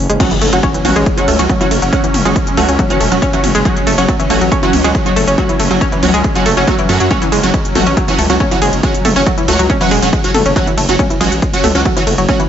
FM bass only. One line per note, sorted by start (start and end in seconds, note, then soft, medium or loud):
0.10 0.18 F#1 medium
0.42 0.50 F#1 loud
0.53 0.61 F#1 medium
0.85 0.93 A1 medium
0.96 1.04 A1 medium
1.28 1.37 C#2 medium
1.39 1.47 C#2 medium
1.71 1.80 F#1 loud
1.82 1.90 F#1 medium
2.14 2.23 F#1 loud
2.25 2.34 F#1 medium
2.57 2.66 C#2 medium
2.69 2.77 C#2 medium
3.01 3.09 E1 medium
3.12 3.20 E1 medium
3.44 3.52 F#1 medium
3.55 3.63 F#1 medium
3.87 3.96 F#1 loud
3.98 4.06 F#1 medium
4.30 4.39 A1 medium
4.41 4.49 A1 medium
4.73 4.82 C#2 medium
4.84 4.93 C#2 medium
5.16 5.25 F#1 loud
5.28 5.36 F#1 medium
5.60 5.68 F#1 loud
5.71 5.79 F#1 medium
6.03 6.12 C#2 loud
6.14 6.22 C#2 medium
6.46 6.55 F#1 loud
6.57 6.65 F#1 medium
6.89 6.98 F#2 medium
7.00 7.08 F#2 medium
7.32 7.41 F#1 loud
7.43 7.52 F#1 medium
7.75 7.84 A1 loud
7.87 7.95 A1 medium
8.19 8.27 C#2 medium
8.30 8.38 C#2 medium
8.62 8.70 F#1 medium
8.73 8.81 F#1 medium
9.05 9.14 F#1 loud
9.16 9.24 F#1 medium
9.48 9.57 C#2 medium
9.59 9.67 C#2 medium
9.91 10.00 E1 loud
10.02 10.11 E1 medium
10.34 10.43 F#1 medium
10.46 10.54 F#1 medium
10.77 10.86 F#1 loud
10.89 10.97 F#1 medium
11.21 11.29 A1 medium
11.32 11.40 A1 medium
11.64 11.73 C#2 loud
11.75 11.83 C#2 medium
12.07 12.16 F#1 medium
12.18 12.26 F#1 medium